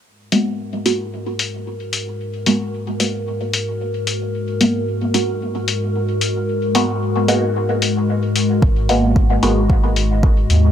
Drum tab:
HH |-o-o-o-o|-o-o-o-o|-o-o-o-o|-o-o-o-o|
BD |--------|--------|--------|--------|

HH |-o-o-o-o|
BD |o-o-o-o-|